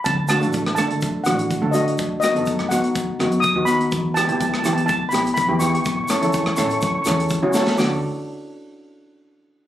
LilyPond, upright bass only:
\new Staff \with { instrumentName = "Upright bass" } { \clef bass \time 4/4 \key d \major \tempo 4 = 124 d,8. a,,8. d8 r8 a,,8. d,8. | b,,8. fis,8. b,8 r8 fis,8. dis,8. | e,8. b,,8. e8 r8 b,,8. e,8. | a,,8. e,8. a,8 r8 e,8. cis,8. |
d,8 r2. r8 | }